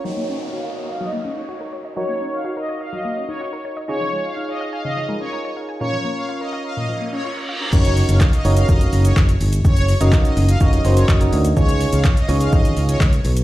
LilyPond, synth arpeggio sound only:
\new Staff \with { instrumentName = "Synth arpeggio sound" } { \time 4/4 \key ges \lydian \tempo 4 = 125 ges16 bes16 des'16 r16 ges'16 bes'16 des''16 ees''16 ges16 bes16 des'16 ees'16 ges'16 bes'16 des''16 ees''16 | ges16 bes16 des'16 r16 ges'16 bes'16 des''16 ees''16 ges16 bes16 des'16 ees'16 ges'16 bes'16 des''16 ees''16 | des16 f16 aes16 r16 ees'16 des''16 f''16 aes''16 des16 f16 aes16 des'16 ees'16 des''16 f''16 aes''16 | bes,16 f16 bes16 r16 f'16 bes'16 f''16 bes''16 bes,16 f16 bes16 des'16 f'16 bes'16 f''16 bes''16 |
r1 | r1 | r1 | }